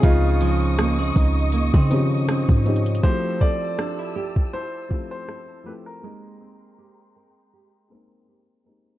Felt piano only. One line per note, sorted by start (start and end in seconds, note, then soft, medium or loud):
0.00 0.85 F3 medium
0.00 0.86 C4 medium
0.00 0.87 C#4 medium
0.00 0.87 D#4 medium
0.00 0.88 G#4 medium
1.89 1.97 D#3 medium
1.89 2.52 C4 medium
1.89 2.52 C#4 medium
1.89 2.53 D#4 medium
1.93 2.54 F3 medium
1.93 2.53 G4 medium
2.64 2.95 F3 medium
2.64 2.96 C4 medium
2.64 2.97 C#4 medium
2.64 2.97 D#4 medium
2.68 2.98 G4 medium
3.01 4.23 F3 medium
3.01 4.23 A3 medium
3.01 4.24 C4 medium
3.01 4.24 E4 medium
3.06 3.12 F#4 medium
3.12 4.28 G4 medium
4.89 5.51 F3 medium
4.89 5.51 A3 medium
4.89 5.52 C4 medium
4.89 5.53 E4 medium
4.93 5.53 G4 medium
5.64 5.95 F3 medium
5.64 5.96 A3 medium
5.64 5.96 C4 medium
5.64 5.97 E4 medium
5.68 5.98 A4 medium
6.01 7.23 G#3 medium
6.01 7.23 A#3 medium
6.01 7.24 C4 medium
6.01 7.25 D#4 medium
6.06 7.25 G4 medium
7.89 8.51 G#3 medium
7.89 8.51 A#3 medium
7.89 8.52 C4 medium
7.89 8.53 D#4 medium
7.93 8.53 A#4 medium
8.64 8.95 G#3 medium
8.64 8.96 A#3 medium
8.64 8.96 C4 medium
8.64 8.97 D#4 medium
8.68 8.98 G4 medium